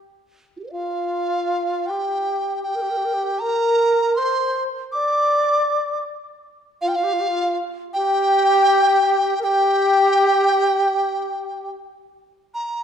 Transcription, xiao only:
0.71 1.91 F4 medium
1.90 2.66 G4 medium
2.67 2.77 G4 medium
2.75 2.83 A#4 medium
2.82 2.92 G4 medium
2.90 2.99 A#4 medium
2.97 3.07 G4 medium
3.05 3.15 A#4 medium
3.14 3.43 G4 medium
3.41 4.19 A#4 medium
4.18 4.68 C5 medium
4.94 6.04 D5 medium
6.82 6.95 F4 medium
6.98 7.05 F4 medium
7.03 7.14 G4 medium
7.13 7.22 F4 medium
7.20 7.29 G4 medium
7.27 7.58 F4 loud
7.95 9.34 G4 loud
9.39 9.46 A#4 medium
9.45 11.75 G4 loud

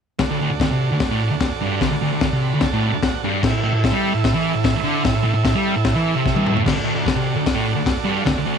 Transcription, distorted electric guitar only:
0.20 0.30 D2 medium
0.31 0.40 D2 medium
0.41 0.50 D2 loud
0.51 0.61 D2 medium
0.62 0.71 D2 medium
0.72 0.91 C3 loud
0.92 1.07 D2 medium
1.11 1.30 A2 loud
1.31 1.47 D2 medium
1.62 1.81 G2 loud
1.82 1.90 D2 medium
1.91 2.01 D2 medium
2.02 2.12 D2 loud
2.13 2.22 D2 medium
2.24 2.33 D2 medium
2.33 2.52 C3 medium
2.54 2.69 D2 medium
2.74 2.93 A2 loud
2.93 3.09 D2 medium
3.24 3.43 G2 loud
3.44 3.52 A2 medium
3.53 3.62 A2 medium
3.63 3.72 A2 loud
3.73 3.83 A2 medium
3.85 3.94 A2 medium
3.92 4.12 G3 loud
4.14 4.30 A2 medium
4.34 4.53 E3 loud
4.54 4.70 A2 medium
4.83 5.03 D3 loud
5.04 5.13 A2 medium
5.14 5.23 A2 medium
5.24 5.32 A2 loud
5.34 5.44 A2 medium
5.45 5.55 A2 medium
5.55 5.74 G3 medium
5.76 5.92 A2 medium
5.95 6.15 E3 loud
6.15 6.35 C3 loud
6.37 6.55 G2 loud
6.56 6.65 A2 loud
6.66 6.75 D2 medium
6.76 6.84 D2 medium
6.85 6.94 D2 loud
6.95 7.05 D2 medium
7.06 7.16 D2 medium
7.16 7.35 C3 loud
7.36 7.52 D2 medium
7.55 7.75 A2 loud
7.75 7.92 D2 medium
8.05 8.25 G2 medium
8.25 8.36 D2 medium
8.38 8.45 D2 medium
8.46 8.56 D2 loud

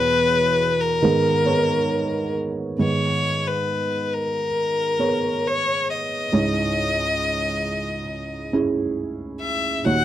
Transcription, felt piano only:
0.00 0.99 E2 medium
0.00 0.99 B2 medium
0.00 0.94 E4 medium
0.00 0.94 G#4 medium
0.00 0.95 C#5 medium
1.02 2.75 G#2 soft
1.02 2.75 D#3 medium
1.02 1.43 B3 medium
1.02 1.44 G#4 medium
1.02 1.45 A#4 medium
1.45 2.72 B3 medium
1.45 2.72 G#4 medium
1.45 2.72 C#5 medium
2.78 6.28 G#2 soft
2.78 6.28 D#3 soft
2.78 4.47 B3 soft
2.78 4.47 G#4 soft
4.99 6.25 B3 soft
4.99 6.26 G#4 soft
4.99 6.26 C#5 medium
6.32 9.82 C#2 soft
6.32 9.82 G#2 soft
6.32 8.00 D#4 medium
6.32 8.00 E4 soft
6.32 8.01 C#5 medium
8.53 9.79 C#4 medium
8.53 9.79 E4 medium
8.53 9.79 G#4 medium
9.84 10.05 D#2 soft
9.84 10.05 A#2 soft
9.84 10.05 D#4 medium
9.84 10.05 F#4 soft
9.84 10.05 C#5 medium

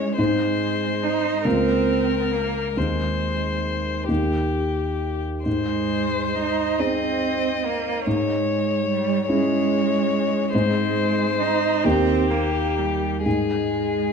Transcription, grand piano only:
0.00 0.14 C#4 soft
0.00 0.14 E4 soft
0.00 0.15 G#4 soft
0.18 1.41 G#2 soft
0.18 1.41 C4 soft
0.18 1.42 D#4 soft
0.18 1.42 G#4 soft
1.45 2.72 C#2 soft
1.45 2.72 A#3 soft
1.45 2.73 F4 soft
1.45 2.73 A#4 soft
2.77 4.05 D#2 soft
2.77 4.05 C4 soft
2.77 4.06 D#4 soft
2.77 4.06 G#4 soft
4.08 5.42 D#2 soft
4.08 5.42 A#3 soft
4.08 5.42 D#4 soft
4.08 5.42 G4 soft
5.46 6.74 G#2 soft
6.79 8.02 C4 soft
6.79 8.02 D#4 soft
6.79 8.02 G#4 soft
8.07 9.25 G#2 soft
9.29 10.49 C#4 soft
9.29 10.50 E4 soft
9.29 10.50 G#4 soft
10.54 11.81 G#2 soft
10.54 11.81 C4 soft
10.54 11.81 D#4 soft
10.54 11.82 G#4 soft
11.85 13.21 D#2 soft
11.85 13.21 A#3 soft
11.85 13.22 D#4 soft
11.85 13.22 G4 soft
13.26 14.12 G#2 soft

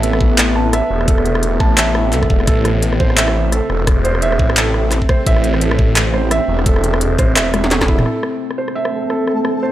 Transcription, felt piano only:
0.00 0.03 A4 medium
0.00 0.20 A4 medium
0.00 0.73 E5 loud
0.00 0.56 A5 medium
0.56 0.72 A5 medium
0.73 1.07 E5 loud
1.08 1.25 A4 medium
1.60 1.77 A5 medium
1.78 2.11 E5 medium
2.13 2.29 A4 medium
2.48 2.64 A4 medium
3.00 3.17 C5 medium
3.17 3.51 E5 loud
3.52 3.69 A4 medium
4.05 4.21 C5 medium
4.22 4.55 E5 loud
4.57 4.74 A4 medium
5.09 5.26 C5 medium
5.27 5.60 E5 loud
5.62 5.78 A4 medium
6.14 6.31 C5 medium
6.31 6.65 E5 loud
6.66 6.83 A4 medium
7.19 7.35 C5 medium
7.36 7.52 E5 loud
7.71 7.87 A3 medium
7.88 8.04 E4 medium
8.06 8.22 A4 medium
8.58 8.75 C5 medium
8.75 9.09 E5 medium
9.10 9.27 A4 medium
9.63 9.72 C5 medium

